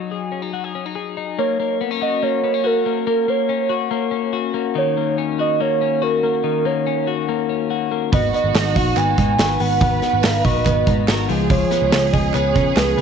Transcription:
Already playing: F#3 D#4
0.11 G#4
0.32 C#4
0.42 D#4
0.53 F#4
0.64 G#4
0.75 C#4
0.86 D#4
0.95 G#4
1.17 D#4
1.38 A#3 C#5
1.60 A#3
1.81 B3
1.91 C#4
2.02 F#4 D#5
2.23 A#3 C#5
2.44 B3
2.54 C#4
2.64 F#4 A#4
2.86 A#3
3.07 A#3 A#4
3.28 A#3 C#5
3.49 C#4
3.69 F#4
3.91 A#3
4.11 C#4
4.33 F#4
4.54 A#3
4.75 D#3 C#5
4.97 A#3
5.18 C#4
5.39 F#4 D#5
5.60 A#3 C#5
5.81 C#4
6.02 F#4 A#4
6.23 A#3 A#4
6.44 D#3 A#4
6.65 A#3 C#5
6.87 C#4
7.07 F#4
7.29 A#3
7.49 C#4
7.70 F#4
7.91 A#3
8.12 G#1 B3 F#4 D#5, kick, open hi-hat
8.33 B3 D#5, hi-hat pedal, open hi-hat
8.44 G#1
8.54 G#1 D#4, snare, clap, hi-hat pedal, open hi-hat
8.75 A#1 F#4 F#5, kick, hi-hat pedal, open hi-hat
8.97 G#1 B3 G#5, clap, hi-hat pedal, open hi-hat
9.18 G#2 D#4 G#5, kick, hi-hat pedal, open hi-hat
9.38 G#1 F#4 B4, snare, clap, hi-hat pedal, open hi-hat
9.60 G#1 B3 F#5, hi-hat pedal, open hi-hat
9.81 G#1 B3, kick, hi-hat pedal, open hi-hat
10.02 B3 F#5, snare, hi-hat pedal, open hi-hat
10.13 G#1
10.23 G#1 D#4 F5, snare, clap, hi-hat pedal, open hi-hat
10.44 A#1 F#4 D#5, kick, hi-hat pedal, open hi-hat
10.65 G#1 B3, kick, clap, hi-hat pedal, open hi-hat
10.87 G#2 D#4, kick, hi-hat pedal, open hi-hat
11.08 G#1 F#4 A#4, snare, clap, hi-hat pedal, open hi-hat
11.29 C#2 F3 G#4, hi-hat pedal, open hi-hat
11.50 F3 C#5, kick, hi-hat pedal, open hi-hat
11.71 B3, snare, hi-hat pedal, open hi-hat
11.82 C#2
11.92 C#2 C#4, snare, clap, hi-hat pedal, open hi-hat
12.13 C#2 G#4 D#5, kick, hi-hat pedal, open hi-hat
12.34 C#2 B3 C#5, clap, hi-hat pedal, open hi-hat
12.55 C#3 C#4, kick, hi-hat pedal, open hi-hat
12.76 C#2 G#4 B4, snare, clap, hi-hat pedal, open hi-hat
12.96 C#2 B3 B4, hi-hat pedal

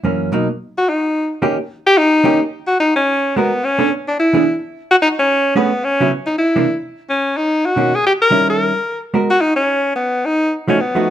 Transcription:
0.04 F#2 E3 A#3 C#4
0.32 B2 F#3 A#3 D#4
0.78 F#4
0.89 D#4
1.42 D#3 A#3 C#4 G4
1.87 G4
1.98 D#4
2.24 D#3 A#3 C#4 G4
2.67 F#4
2.80 D#4
2.96 C#4
3.36 G#3 B3 F#4 A#4
3.64 C#4
3.79 B3 D4 A4 C#5
4.08 D4
4.19 E4
4.33 E3 B3 D4 G#4
4.91 F#4
5.02 D#4
5.19 C#4
5.56 A3 B3 C#4 G#4 B4
5.84 C#4
6.00 C#3 F#3 B3 E4
6.27 D#4
6.39 E4
6.56 C3 E3 A#3 D4
7.10 C#4
7.37 D#4
7.66 F#4
7.76 B2 D#3 A#3 C#4
7.95 G#4
8.07 G4
8.22 A#4
8.31 D#3 G3 C#4 E4
8.50 A#4
9.14 G#3 B3 F#4 A#4
9.30 F#4
9.41 D#4
9.56 C#4
9.96 B3
10.25 D#4
10.68 F3 A3 C#4 D#4 F#4
10.81 B3
10.95 F3 A3 D#4 F#4

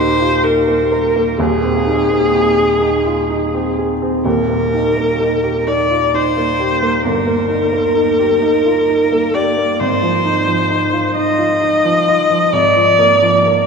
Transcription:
Already playing: D#1 D#2 A#3 D#4 A#4 C5
0.20 F4
0.44 D#4 A#4
0.68 A#3
0.92 A#4
1.16 A#3
1.38 D#1 D#2 G#4
1.63 C4
1.87 D#4
2.10 C4
2.34 D#4
2.58 G#4
2.81 D#4
3.06 F4
3.29 D#4
3.54 C4
3.78 G#4
4.02 C4
4.24 D#1 D#2 A#4
4.50 A#3
4.73 D#4
4.97 A#3
5.20 D#4
5.43 G4
5.67 D#4 D5
5.90 F4
6.14 D#4 C5
6.37 A#3
6.60 G4
6.82 A#3
7.05 G1 A#4
7.26 A#3
7.49 D#4
7.73 A#3
7.95 D#4
8.19 G4
8.42 D#4
8.65 F4
8.89 D#4
9.12 A#3
9.34 G4 D5
9.57 A#3
9.79 G#1 C5
10.02 F3
10.25 D#4
10.47 F3
10.70 D#4
10.93 F4
11.15 D#4 D#5
11.38 F4
11.61 D#4
11.85 F3
12.08 F4
12.31 F3
12.53 G#1 D5
12.76 F3
12.99 A#3
13.22 F3
13.46 A#3

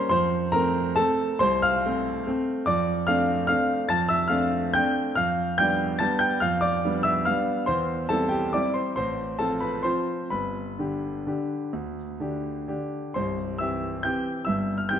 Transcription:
0.09 F2 C5 C6
0.52 A3 C4 A#4 A#5
0.96 A3 C4 A4 A5
1.39 C2 C5 C6
1.62 F5 F6
1.86 A3 C4
2.27 A3 C4
2.66 F2 D5 D6
3.07 A3 C4 D4 F5 F6
3.47 A3 C4 D4 F5 F6
3.89 F2 A5 A6
4.09 E5 E6
4.28 A3 C4 D4 F5 F6
4.74 A3 C4 D4 G5 G6
5.15 F2 F5 F6
5.58 G3 B3 D4 G5 G6
5.99 G3 B3 D4 A5 A6
6.19 G5 G6
6.40 F2 F5 F6
6.61 D5 D6
6.85 G3 B3 D4
7.03 E5 E6
7.25 G3 B3 D4 F5 F6
7.66 E2 C5 C6
8.09 G3 C4 E4 A4 A5
8.29 G4 G5
8.53 G3 C4 E4 D5 D6
8.74 C5 C6
8.96 A1 C5 C6
9.39 F3 C4 F4 A4 A5
9.61 B4 B5
9.83 F3 C4 F4 C5 C6
10.30 G1 B4 B5
10.79 D3 D4 G4
11.27 D3 D4 G4
11.73 D2
12.20 D3 D4 G4
12.68 D3 D4 G4
13.14 C1 C2 C5 C6
13.58 E3 C4 G4 E5 E6
14.03 E3 C4 G4 G5 G6
14.45 G1 G2 E5 E6
14.78 F6
14.89 E3 C4 G4 G5 G6

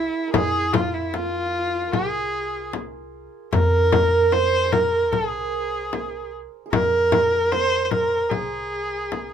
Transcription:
Already playing: E4 G#4 A#4
0.28 A#4
0.34 F2 G#4, frame drum
0.73 F4, frame drum
0.94 E4
1.14 F4, frame drum
1.22 F4
1.29 F4
1.37 F4
1.46 F4
1.52 F4
1.59 F4
1.67 F4
1.75 F4
1.82 F4
1.88 A#4
1.92 C2 G#4, frame drum
2.73 frame drum
3.53 F2 A#4, frame drum
3.60 A#4
3.67 A#4
3.76 A#4
3.85 A#4
3.91 A#4, frame drum
4.07 A#4
4.13 A#4
4.21 A#4
4.32 C5, frame drum
4.65 G#4
4.72 A#4, frame drum
5.12 C2 G#4, frame drum
5.93 frame drum
6.66 G#4
6.72 F2 A#4, frame drum
7.12 frame drum
7.32 A#4
7.46 A#4
7.52 C5, frame drum
7.85 C5
7.91 A#4, frame drum
8.30 C2 G#4, frame drum
9.12 frame drum

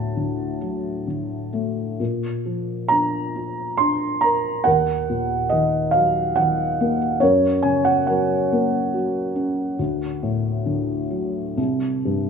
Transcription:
Already playing: D2 A2 F#5 A5
0.16 D3
0.62 F#3
1.07 D3
1.53 A3
2.00 A#2
2.46 F3
2.88 D4 A#5
3.36 F4
3.78 D4 C6
4.21 A#4 A#5
4.64 D#2 A#4 F#5
5.10 A#2
5.49 D#3 D#5
5.91 F#3 F5
6.36 D#3 F#5
6.81 A#3
7.20 F#2 A#4 C#5
7.62 C#3 G#5
7.85 F#5
8.07 F#3 A#4 F#5
8.53 A#3
8.94 F#3
9.36 C#4
9.79 D2
10.23 A2
10.66 D3
11.10 F#3
11.57 C2
12.05 G2

